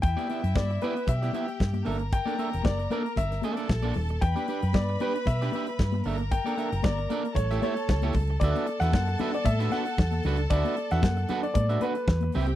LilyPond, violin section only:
\new Staff \with { instrumentName = "Violin section" } { \time 4/4 \key e \dorian \tempo 4 = 115 <e' e''>2 <g' g''>4. <bes' bes''>8~ | <bes' bes''>2~ <bes' bes''>8 <a' a''>4. | <b' b''>2.~ <b' b''>8 <bes' bes''>8~ | <bes' bes''>2 <a' a''>2 |
\key d \mixolydian <a' a''>1~ | <a' a''>2. r8 <g' g''>8 | }